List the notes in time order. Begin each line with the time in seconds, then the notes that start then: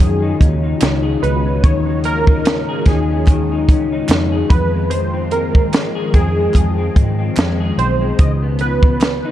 Already playing: C#3 G#3 C#4 D#4 F4 F#4 G#4
0.00 F#2 D#3, closed hi-hat
0.22 D#4
0.40 D#2 C#4, kick, closed hi-hat
0.63 D#4
0.81 C#2 C#4, snare, clap, closed hi-hat
1.03 G#4
1.22 C#2 D#4 B4, closed hi-hat
1.46 C#4
1.64 D#2 D#3 C#5, kick, closed hi-hat
1.86 D#4
2.04 C#4 A#4, closed hi-hat
2.27 D#4, kick
2.46 C#4, snare, clap, closed hi-hat
2.69 G#4
2.86 D#2 D#4 G#4, kick, snare, closed hi-hat
3.10 C#4
3.26 D#3, kick, clap, closed hi-hat
3.52 D#4
3.69 C#2 C#4, kick, closed hi-hat
3.92 D#4
4.09 F2 C#4, snare, clap, closed hi-hat
4.32 G#4
4.50 F2 D#3 F4 B4, kick, closed hi-hat
4.73 G#3
4.90 F2 C5, closed hi-hat
5.13 C4
5.31 G#3 A#4, closed hi-hat
5.53 C4, kick
5.73 G#3, snare, clap, closed hi-hat
5.95 G#4
6.14 F2 C4 G#4, kick, closed hi-hat
6.36 G#3
6.54 F2, kick, clap, closed hi-hat
6.78 C4
6.96 G#2 G#3, kick, closed hi-hat
7.19 C4
7.36 F2 G#3, snare, clap, closed hi-hat
7.60 G#4
7.78 B1 C4 C5, closed hi-hat
8.01 G#3
8.19 C#2 C#3 B3 D#5, kick, closed hi-hat
8.43 B3
8.59 F3 B4, closed hi-hat
8.83 B3, kick
9.01 F3, snare, clap, closed hi-hat
9.25 D#4